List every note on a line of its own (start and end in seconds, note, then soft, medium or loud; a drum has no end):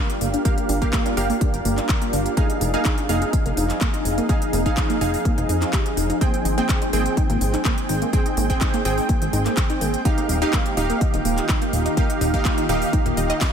0.00 2.33 G3 medium
0.00 0.42 A#3 medium
0.00 2.33 D4 medium
0.00 2.33 F4 medium
0.00 0.42 G4 medium
0.00 2.33 A#4 medium
0.00 0.42 F5 loud
0.10 closed hi-hat soft
0.21 0.36 G1 medium
0.21 0.24 A#3 medium
0.21 open hi-hat loud
0.34 0.36 D4 medium
0.34 closed hi-hat soft
0.45 0.79 A#3 medium
0.45 0.79 G4 medium
0.45 0.79 F5 loud
0.45 kick loud
0.45 closed hi-hat medium
0.58 0.60 A#3 medium
0.58 closed hi-hat soft
0.69 0.84 G1 loud
0.69 0.72 D4 medium
0.69 open hi-hat loud
0.82 1.14 A#3 medium
0.82 1.14 G4 medium
0.82 1.14 F5 loud
0.82 kick medium
0.82 closed hi-hat soft
0.93 0.96 A#3 medium
0.93 kick loud
0.93 clap loud
0.93 closed hi-hat medium
1.06 1.08 D4 medium
1.06 closed hi-hat soft
1.17 1.32 G1 medium
1.17 2.34 A#3 medium
1.17 2.34 G4 medium
1.17 2.34 F5 loud
1.17 open hi-hat loud
1.30 1.32 A#3 medium
1.30 open hi-hat medium
1.41 1.44 D4 medium
1.41 kick loud
1.41 closed hi-hat medium
1.54 1.61 G1 loud
1.54 closed hi-hat soft
1.65 1.80 G1 loud
1.65 1.68 A#3 medium
1.65 open hi-hat loud
1.78 1.80 D4 medium
1.78 clap soft
1.78 closed hi-hat soft
1.89 kick loud
1.89 clap loud
1.89 closed hi-hat medium
2.02 2.04 A#3 medium
2.02 closed hi-hat soft
2.13 2.28 G1 medium
2.13 2.16 D4 medium
2.13 open hi-hat loud
2.26 closed hi-hat soft
2.37 6.17 F3 medium
2.37 2.40 A#3 medium
2.37 10.01 C4 medium
2.37 2.71 D#4 medium
2.37 6.17 D#4 medium
2.37 2.71 G#4 medium
2.37 6.17 G#4 medium
2.37 2.71 F5 medium
2.37 kick loud
2.37 closed hi-hat medium
2.50 2.52 D#4 medium
2.50 closed hi-hat soft
2.61 2.76 F1 loud
2.61 open hi-hat loud
2.74 2.77 A#3 medium
2.74 3.06 D#4 medium
2.74 3.06 G#4 medium
2.74 3.06 F5 loud
2.74 closed hi-hat soft
2.85 2.88 D#4 medium
2.85 kick loud
2.85 clap loud
2.85 closed hi-hat medium
2.98 closed hi-hat soft
3.09 3.24 F1 medium
3.09 3.12 A#3 medium
3.09 4.26 D#4 medium
3.09 4.26 G#4 medium
3.09 4.26 F5 loud
3.09 open hi-hat loud
3.22 3.25 D#4 medium
3.22 closed hi-hat soft
3.33 kick loud
3.33 closed hi-hat medium
3.46 3.53 F1 loud
3.46 3.48 A#3 medium
3.46 closed hi-hat soft
3.57 3.72 F1 loud
3.57 3.60 D#4 medium
3.57 open hi-hat loud
3.70 clap soft
3.70 closed hi-hat soft
3.81 3.84 A#3 medium
3.81 kick loud
3.81 clap loud
3.81 closed hi-hat medium
3.94 3.96 D#4 medium
3.94 closed hi-hat soft
4.05 4.20 F1 medium
4.05 open hi-hat loud
4.18 4.20 A#3 medium
4.18 closed hi-hat soft
4.29 4.32 D#4 medium
4.29 4.63 D#4 medium
4.29 4.63 G#4 medium
4.29 4.63 F5 medium
4.29 kick loud
4.29 closed hi-hat medium
4.42 closed hi-hat soft
4.53 4.68 F1 loud
4.53 4.56 A#3 medium
4.53 open hi-hat loud
4.66 4.68 D#4 medium
4.66 4.98 D#4 medium
4.66 4.98 G#4 medium
4.66 4.98 F5 loud
4.66 kick medium
4.66 closed hi-hat soft
4.77 kick loud
4.77 clap loud
4.77 closed hi-hat medium
4.90 4.92 A#3 medium
4.90 closed hi-hat soft
5.01 5.16 F1 medium
5.01 5.04 D#4 medium
5.01 6.18 D#4 medium
5.01 6.18 G#4 medium
5.01 6.18 F5 loud
5.01 open hi-hat loud
5.14 open hi-hat medium
5.25 5.28 A#3 medium
5.25 kick loud
5.25 closed hi-hat medium
5.38 5.45 F1 loud
5.38 5.40 D#4 medium
5.38 closed hi-hat soft
5.49 5.64 F2 medium
5.49 5.54 D#4 medium
5.49 open hi-hat loud
5.62 5.69 D#4 medium
5.62 clap soft
5.62 closed hi-hat soft
5.73 5.78 G4 medium
5.73 kick loud
5.73 clap loud
5.73 closed hi-hat medium
5.86 closed hi-hat soft
5.97 6.12 F1 medium
5.97 6.02 D#4 medium
5.97 open hi-hat loud
6.10 6.17 D#4 medium
6.10 closed hi-hat soft
6.21 10.01 G#3 medium
6.21 6.24 A#3 medium
6.21 6.55 C4 medium
6.21 6.55 G#4 medium
6.21 6.55 G5 loud
6.21 13.53 G5 medium
6.21 kick loud
6.21 closed hi-hat medium
6.34 closed hi-hat soft
6.45 6.60 G#1 loud
6.45 6.48 D#4 medium
6.45 open hi-hat loud
6.58 6.61 A#3 medium
6.58 6.90 C4 medium
6.58 6.90 G#4 medium
6.58 6.90 G5 loud
6.58 closed hi-hat soft
6.69 kick loud
6.69 clap loud
6.69 closed hi-hat medium
6.82 6.85 D#4 medium
6.82 closed hi-hat soft
6.93 7.08 G#1 medium
6.93 6.96 A#3 medium
6.93 8.10 C4 medium
6.93 8.10 G#4 medium
6.93 8.10 G5 loud
6.93 open hi-hat loud
7.06 closed hi-hat soft
7.17 7.20 D#4 medium
7.17 kick loud
7.17 closed hi-hat medium
7.30 7.37 G#1 loud
7.30 7.32 A#3 medium
7.30 closed hi-hat soft
7.41 7.56 G#1 loud
7.41 open hi-hat loud
7.54 7.57 D#4 medium
7.54 clap soft
7.54 closed hi-hat soft
7.65 7.68 A#3 medium
7.65 kick loud
7.65 clap loud
7.65 closed hi-hat medium
7.78 closed hi-hat soft
7.89 8.04 G#1 medium
7.89 7.92 D#4 medium
7.89 open hi-hat loud
8.02 8.05 A#3 medium
8.02 closed hi-hat soft
8.13 8.47 C4 medium
8.13 8.47 G#4 medium
8.13 8.47 G5 loud
8.13 kick loud
8.13 closed hi-hat medium
8.26 8.29 D#4 medium
8.26 closed hi-hat soft
8.37 8.52 G#1 loud
8.37 8.40 A#3 medium
8.37 open hi-hat loud
8.50 8.82 C4 medium
8.50 8.82 G#4 medium
8.50 8.82 G5 loud
8.50 kick medium
8.50 closed hi-hat soft
8.61 8.64 D#4 medium
8.61 kick loud
8.61 clap loud
8.61 closed hi-hat medium
8.74 8.77 A#3 medium
8.74 closed hi-hat soft
8.85 9.00 G#1 medium
8.85 10.02 C4 medium
8.85 10.02 G#4 medium
8.85 10.02 G5 loud
8.85 open hi-hat loud
8.98 9.01 D#4 medium
8.98 open hi-hat medium
9.09 9.12 A#3 medium
9.09 kick loud
9.09 closed hi-hat medium
9.22 9.29 G#1 loud
9.22 closed hi-hat soft
9.33 9.48 G#1 loud
9.33 9.36 D#4 medium
9.33 open hi-hat loud
9.46 9.48 A#3 medium
9.46 clap soft
9.46 closed hi-hat soft
9.57 kick loud
9.57 clap loud
9.57 closed hi-hat medium
9.70 9.73 D#4 medium
9.70 closed hi-hat soft
9.81 9.96 G#1 medium
9.81 9.84 A#3 medium
9.81 open hi-hat loud
9.94 closed hi-hat soft
10.05 13.53 D#3 medium
10.05 13.53 A#3 medium
10.05 10.08 D#4 medium
10.05 10.39 D#4 medium
10.05 13.53 F4 medium
10.05 10.39 G4 medium
10.05 10.39 F5 medium
10.05 kick loud
10.05 closed hi-hat medium
10.18 10.21 A#3 medium
10.18 closed hi-hat soft
10.29 10.44 D#1 loud
10.29 open hi-hat loud
10.42 10.44 D#4 medium
10.42 10.74 D#4 medium
10.42 10.74 G4 medium
10.42 10.74 F5 loud
10.42 closed hi-hat soft
10.53 10.56 A#3 medium
10.53 kick loud
10.53 clap loud
10.53 closed hi-hat medium
10.66 closed hi-hat soft
10.77 10.92 D#1 medium
10.77 10.80 D#4 medium
10.77 11.94 D#4 medium
10.77 11.94 G4 medium
10.77 11.94 F5 loud
10.77 open hi-hat loud
10.90 10.92 A#3 medium
10.90 closed hi-hat soft
11.01 kick loud
11.01 closed hi-hat medium
11.14 11.21 D#1 loud
11.14 11.16 D#4 medium
11.14 closed hi-hat soft
11.25 11.40 D#1 loud
11.25 11.28 A#3 medium
11.25 open hi-hat loud
11.37 clap soft
11.37 closed hi-hat soft
11.49 11.52 D#4 medium
11.49 kick loud
11.49 clap loud
11.49 closed hi-hat medium
11.62 11.64 A#3 medium
11.62 closed hi-hat soft
11.73 11.88 D#1 medium
11.73 open hi-hat loud
11.86 11.88 D#4 medium
11.86 closed hi-hat soft
11.97 12.00 A#3 medium
11.97 12.31 D#4 medium
11.97 12.31 G4 medium
11.97 12.31 F5 medium
11.97 kick loud
11.97 closed hi-hat medium
12.10 closed hi-hat soft
12.21 12.36 D#1 loud
12.21 12.24 D#4 medium
12.21 open hi-hat loud
12.34 12.36 A#3 medium
12.34 12.66 D#4 medium
12.34 12.66 G4 medium
12.34 12.66 F5 loud
12.34 kick medium
12.34 closed hi-hat soft
12.45 kick loud
12.45 clap loud
12.45 closed hi-hat medium
12.58 12.60 D#4 medium
12.58 closed hi-hat soft
12.69 12.84 D#1 medium
12.69 12.72 A#3 medium
12.69 13.53 D#4 medium
12.69 13.53 G4 medium
12.69 13.53 F5 loud
12.69 open hi-hat loud
12.82 open hi-hat medium
12.93 12.96 D#4 medium
12.93 kick loud
12.93 closed hi-hat medium
13.06 13.13 D#1 loud
13.06 13.08 A#3 medium
13.06 closed hi-hat soft
13.17 13.32 D#1 medium
13.17 13.22 D#5 medium
13.17 open hi-hat loud
13.30 13.34 D#5 loud
13.30 clap soft
13.30 closed hi-hat soft
13.41 kick loud
13.41 snare medium
13.41 clap loud
13.41 closed hi-hat medium